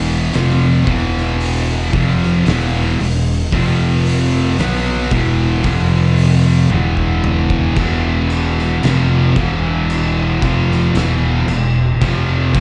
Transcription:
Already playing: E1 E2 B2 E3
0.33 F1 F2 C3 F3, snare, open hi-hat
0.87 E1 E2 B2 E3, kick, open hi-hat
1.17 snare
1.40 open hi-hat
1.93 F1 F2 C3 F3, kick, open hi-hat
2.23 snare
2.46 E1 E2 B2 E3, snare, open hi-hat
3.00 E1 E2 B2, open hi-hat
3.52 F1 F2 C3 F3, kick, open hi-hat
4.05 open hi-hat
4.59 B1 B2 F#3 B3, snare, open hi-hat
5.11 E1 E2 B2 E3, kick, open hi-hat
5.64 F1 F2 C3 F3, kick, open hi-hat
6.17 open hi-hat
6.70 E1 E2 B2 E3, high tom
6.97 kick
7.24 mid tom
7.50 kick
7.76 E1 E2 B2 E3, kick, crash
8.30 crash
8.59 snare
8.83 F1 F2 C3 F3, snare, crash
9.36 E1 E2 B2 E3, kick, crash
9.90 crash
10.42 F1 F2 C3 F3, kick, crash
10.72 snare
10.94 E1 E2 B2, snare, crash
10.99 E3
11.48 E1 E2 B2, crash
12.02 F1 F2 C3 F3, kick, crash
12.53 A#1 A#2 F3 A#3, kick, crash

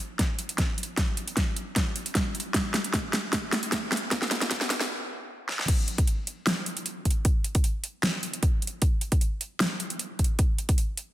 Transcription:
0.19 kick, snare, closed hi-hat
0.39 closed hi-hat
0.49 closed hi-hat
0.58 kick, snare, closed hi-hat
0.78 closed hi-hat
0.83 closed hi-hat
0.97 kick, snare, closed hi-hat
1.17 closed hi-hat
1.28 closed hi-hat
1.37 kick, snare, closed hi-hat
1.56 closed hi-hat
1.76 kick, snare, closed hi-hat
1.96 closed hi-hat
2.06 closed hi-hat
2.15 kick, snare, closed hi-hat
2.35 closed hi-hat
2.40 closed hi-hat
2.54 kick, snare, closed hi-hat
2.74 snare, closed hi-hat
2.84 closed hi-hat
2.94 kick, snare, closed hi-hat
3.13 snare, closed hi-hat
3.33 kick, snare, closed hi-hat
3.52 snare, closed hi-hat
3.63 closed hi-hat
3.72 kick, snare, closed hi-hat
3.92 snare, closed hi-hat
3.97 closed hi-hat
4.11 kick, snare, closed hi-hat
4.22 snare
4.31 snare, closed hi-hat
4.41 snare, closed hi-hat
4.51 kick, snare, closed hi-hat
4.61 snare
4.70 snare, closed hi-hat
4.81 snare
5.49 snare
5.59 snare
5.68 kick, closed hi-hat, crash
5.88 closed hi-hat
5.98 kick, closed hi-hat
6.07 closed hi-hat
6.27 closed hi-hat
6.47 snare, closed hi-hat
6.66 closed hi-hat
6.77 closed hi-hat
6.86 closed hi-hat
7.05 kick, closed hi-hat
7.11 closed hi-hat
7.25 kick, closed hi-hat
7.44 closed hi-hat
7.55 kick, closed hi-hat
7.64 closed hi-hat
7.84 closed hi-hat
8.03 snare, closed hi-hat
8.23 closed hi-hat
8.33 closed hi-hat
8.43 kick, closed hi-hat
8.62 closed hi-hat
8.67 closed hi-hat
8.82 kick, closed hi-hat
9.01 closed hi-hat
9.12 kick, closed hi-hat
9.21 closed hi-hat
9.41 closed hi-hat
9.60 snare, closed hi-hat
9.80 closed hi-hat
9.90 closed hi-hat
9.99 closed hi-hat
10.19 kick, closed hi-hat
10.24 closed hi-hat
10.39 kick, closed hi-hat
10.58 closed hi-hat
10.69 kick, closed hi-hat
10.78 closed hi-hat
10.97 closed hi-hat

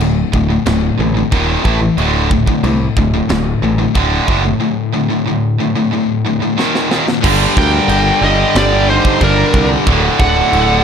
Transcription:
0.00 D1 D2 A2, china
0.33 D1 D2 A2, kick
0.50 D2 A2
0.66 D1 D2 A2, snare, china
0.99 A1 D2 A2
1.17 D2 A2
1.32 D#1 D#2 A#2 D#3, kick, china
1.64 A1 A2 E3 A3, kick
1.81 A2 E3
1.98 D1 D2 A2 D3, china
2.31 D2 A2, kick
2.47 D2 A2, kick
2.64 C2 D2 A2, china
2.97 D1 D2 A2, kick
3.14 D2 A2
3.29 D1 D2 A2, snare, china
3.62 A1 D2 A2
3.78 D2 A2
3.95 D1 D2 A2 D3, kick, china
4.28 F#1 D2 A2 D3, kick
4.45 D2 A2
4.60 D2 A2
4.94 D2 A2
5.10 D2 A2
5.27 D2 A2
5.60 D2 A2
5.76 D2 A2
5.93 D2 A2
6.26 D2 A2
6.42 D2 A2
6.57 D#2 A#2 D#3, snare
6.75 snare
6.91 D#2 A#2 D#3, snare
7.07 D#2 A#2, snare
7.23 G1 G2 D3 G3, kick, crash, china
7.57 D2 A#4 G5, kick
7.88 G1 G2 D3 G3, china
8.21 G1 G2 D3 G3 D#5
8.26 G4
8.55 G1 G2 D3 G3 G4 D5, snare, china
8.90 D#4 C5
9.05 kick
9.21 G1 G2 D3 G3 D4 A#4, kick, china
9.52 C2 G2 D3 G3, kick
9.86 D1 D2 A2 D3, kick, china
10.20 D1 A4 F#5, kick
10.51 D1 D2 A2 D3, china

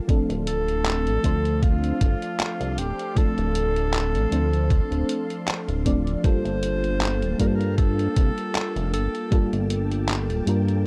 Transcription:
Already playing: G3 A#3 D4 F4 A#4
0.07 D1 F3 A3 C4 D4 A4 D5 F5 C6, kick, closed hi-hat
0.30 D1, closed hi-hat
0.47 A4, closed hi-hat
0.68 closed hi-hat
0.86 clap, closed hi-hat
1.06 A1, closed hi-hat
1.23 D2 F3 A3 C4 D4 C5, kick, closed hi-hat
1.45 closed hi-hat
1.63 F4, kick, closed hi-hat
1.84 closed hi-hat
2.01 G1, kick, closed hi-hat
2.22 closed hi-hat
2.40 clap, closed hi-hat
2.60 C2, closed hi-hat
2.78 D1 G4, closed hi-hat
2.99 closed hi-hat
3.15 D1 F3 A3 C4 D4 A4, kick, closed hi-hat
3.38 D1, closed hi-hat
3.55 closed hi-hat
3.76 closed hi-hat
3.94 clap, closed hi-hat
4.14 A1, closed hi-hat
4.31 D2 F3 A3 C4 D4 C5, closed hi-hat
4.53 closed hi-hat
4.70 kick, closed hi-hat
4.91 D1, closed hi-hat
5.09 closed hi-hat
5.30 closed hi-hat
5.48 clap, closed hi-hat
5.68 D1, closed hi-hat
5.85 F3 A3 C4 D4 D5, kick, closed hi-hat
6.07 closed hi-hat
6.23 G1 G3 A#3 D4 F4 G4 A4 C5 F5 A5, kick, closed hi-hat
6.45 G1, closed hi-hat
6.63 closed hi-hat
6.84 closed hi-hat
7.01 clap, closed hi-hat
7.22 D1, closed hi-hat
7.38 G2 G3 A#3 D4 F4 A4 A#4, kick, closed hi-hat
7.47 C5
7.55 A#4
7.61 closed hi-hat
7.78 A4, kick, closed hi-hat
7.99 closed hi-hat
8.16 C2, kick, closed hi-hat
8.38 closed hi-hat
8.55 clap, closed hi-hat
8.76 F1, closed hi-hat
8.93 G1 A4, closed hi-hat
9.15 closed hi-hat
9.30 G1 G3 A#3 D4 F4 A4 G5, kick, closed hi-hat
9.53 G1, closed hi-hat
9.70 closed hi-hat
9.92 closed hi-hat
10.09 clap, closed hi-hat
10.30 D1, closed hi-hat
10.46 G2 G3 A#3 D4 F4 A#4, closed hi-hat
10.68 closed hi-hat

